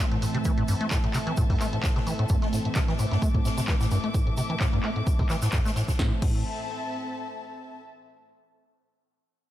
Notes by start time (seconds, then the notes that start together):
Already playing: A2 E3 A3 C4 A4 E5 A5
0.00 snare
0.11 A2, closed hi-hat
0.22 A2, open hi-hat, shaker
0.34 C3, closed hi-hat
0.45 E3, kick, closed hi-hat, shaker
0.58 A2, closed hi-hat
0.68 G2, open hi-hat, shaker
0.81 A3, closed hi-hat
0.91 A2, kick, snare, clap, closed hi-hat, shaker
1.04 A2, closed hi-hat
1.14 C3, clap, open hi-hat, shaker
1.27 E3, closed hi-hat
1.37 A2, kick, closed hi-hat, shaker
1.50 G2, kick, open hi-hat
1.60 A3, clap, open hi-hat, shaker
1.73 A2, closed hi-hat
1.83 A2, kick, snare, clap, closed hi-hat, shaker
1.96 C3, snare, closed hi-hat
2.07 E3, open hi-hat, shaker
2.19 A2, closed hi-hat
2.29 G2, kick, closed hi-hat, shaker
2.42 A3, snare, closed hi-hat
2.53 A2, snare, open hi-hat, shaker
2.65 A2, closed hi-hat
2.75 C3, kick, snare, clap, closed hi-hat, shaker
2.88 E3 D6, snare, closed hi-hat
2.99 A2, open hi-hat, shaker
3.11 G2, snare, closed hi-hat
3.22 A3, kick, closed hi-hat, shaker
3.34 A2, kick, closed hi-hat
3.45 A2, snare, open hi-hat, shaker
3.58 C3, snare, closed hi-hat, shaker
3.68 E3, kick, snare, clap, closed hi-hat, shaker
3.80 A2, snare, closed hi-hat, shaker
3.91 G2, open hi-hat, shaker
4.04 A3, closed hi-hat
4.14 A2, kick, closed hi-hat, shaker
4.27 A2, closed hi-hat
4.37 C3, open hi-hat, shaker
4.50 E3, closed hi-hat
4.60 A2, kick, snare, clap, closed hi-hat, shaker
4.73 G2, closed hi-hat
4.83 A3, clap, open hi-hat
4.96 A2, closed hi-hat
5.07 A2, kick, closed hi-hat, shaker
5.19 C3, kick, open hi-hat
5.29 E3, snare, clap, open hi-hat, shaker
5.42 A2, snare, closed hi-hat, shaker
5.52 G2, kick, snare, clap, closed hi-hat, shaker
5.65 A3, snare, closed hi-hat, shaker
5.76 A2, snare, open hi-hat, shaker
5.88 A2, kick, snare, closed hi-hat, shaker
5.99 A2 C4, kick, snare
6.07 A4
6.14 E5
6.20 A2 A5, kick, crash